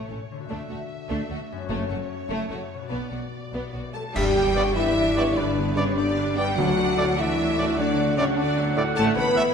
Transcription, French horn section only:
3.94 4.04 A4 medium
4.16 4.76 G4 loud
4.76 5.36 E4 loud
5.38 5.78 D4 medium
5.78 5.97 C#4 medium
5.94 6.36 D4 loud
6.36 6.57 G4 loud
6.58 7.17 F#4 loud
7.19 7.77 E4 medium
7.79 8.18 D4 loud
8.17 8.37 C#4 loud
8.36 8.76 D4 loud
8.96 9.05 A4 loud
9.16 9.54 B4 loud

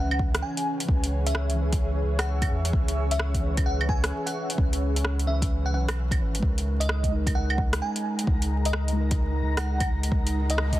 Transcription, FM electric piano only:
0.00 0.21 F#5 medium
0.42 0.67 G#5 medium
1.26 1.51 E5 medium
2.19 2.51 F#5 medium
3.11 3.43 E5 medium
3.66 3.90 F#5 medium
3.89 4.24 G#5 medium
4.26 4.51 F#5 medium
5.27 5.52 E5 medium
5.66 5.71 F#5 medium
5.74 5.83 F#5 medium
6.80 7.12 D#5 medium
7.35 7.60 F#5 medium
7.82 8.06 G#5 medium
8.66 8.89 D#5 medium
9.58 9.89 F#5 medium
10.50 10.80 D#5 medium

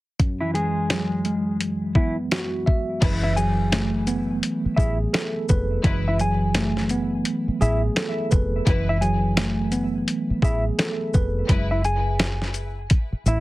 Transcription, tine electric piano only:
0.20 3.02 F#2 medium
0.53 3.01 E3 medium
0.90 3.02 F#3 medium
1.26 3.02 G#3 medium
1.95 3.02 B3 medium
2.32 3.02 F#4 medium
2.66 3.02 E5 medium
3.03 5.82 E3 medium
3.36 5.84 F#3 medium
3.72 5.84 A3 medium
4.07 5.84 B3 medium
4.78 5.84 G#4 medium
5.13 5.84 A4 loud
5.49 5.84 B4 loud
5.83 8.66 E3 loud
6.19 8.66 F#3 medium
6.56 8.67 A3 medium
6.90 8.67 B3 medium
7.61 8.67 G#4 medium
7.96 8.67 A4 loud
8.31 8.66 B4 medium
8.67 11.49 E3 medium
9.01 11.49 F#3 medium
9.37 11.49 A3 medium
9.72 11.49 B3 medium
10.43 11.49 G#4 medium
10.79 11.49 A4 loud
11.14 11.49 B4 loud

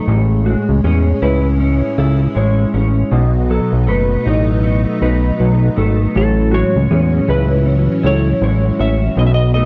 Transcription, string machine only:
0.08 3.09 G#3 medium
0.08 3.09 C#4 medium
3.12 9.65 F#3 medium
3.12 6.12 B3 medium
3.12 6.12 D#4 medium
6.15 9.15 E3 medium
6.15 9.15 C#4 medium
9.17 9.65 B3 medium
9.17 9.65 D#4 loud

